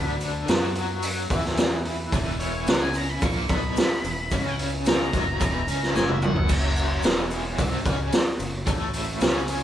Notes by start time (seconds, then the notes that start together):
Already playing: D2 D3 F#3 B3 D4 F#4 B4 F#5 B5
0.20 open hi-hat, shaker
0.48 F#2 F#3 F#4, snare, open hi-hat, shaker
0.75 open hi-hat, shaker
1.02 open hi-hat, shaker
1.30 E2 E3 E4, kick, open hi-hat, shaker
1.45 snare
1.57 snare, open hi-hat, shaker
1.85 open hi-hat
2.12 E1 E2 E3 E4 B4 E5, kick, open hi-hat, shaker
2.40 C#5, open hi-hat, shaker
2.67 C#2 C#3 C#4 F#5, snare, open hi-hat, shaker
2.82 G#5
2.94 A#5, open hi-hat, shaker
3.09 B5
3.22 A#1 A#2 A#3 C#6, kick, open hi-hat, shaker
3.49 B1 B2 B3 B5, kick, open hi-hat, shaker
3.76 snare, open hi-hat, shaker
4.04 E1 E2, open hi-hat, shaker
4.31 C#2 C#3 C#4, kick, open hi-hat, shaker
4.59 open hi-hat
4.85 A#5, snare, open hi-hat, shaker
5.13 F#1 F#2 F#3, kick, open hi-hat, shaker
5.40 E1 E2 E3, kick, open hi-hat, shaker
5.67 C#2 C#3 C#4, open hi-hat, shaker
5.83 snare
5.95 F#1 F#2 F#3 G#5, snare, shaker
6.08 E5, high tom
6.22 F#5, mid tom, shaker
6.36 floor tom
6.49 F#1 F#2 F#3 C#4 F#4 C#5 A#5, kick, crash, shaker
6.76 open hi-hat, shaker
7.02 E1 E2 E3, snare, open hi-hat, shaker
7.31 open hi-hat, shaker
7.58 C2 C3 C4, kick, open hi-hat, shaker
7.85 C#2 C#3 C#4, kick, open hi-hat, shaker
8.12 snare, open hi-hat, shaker
8.39 F#1 F#2, open hi-hat, shaker
8.66 A1 A2 A3, kick, open hi-hat, shaker
8.93 open hi-hat, shaker
9.20 C#2 C#3 C#4, snare, open hi-hat, shaker
9.48 open hi-hat, shaker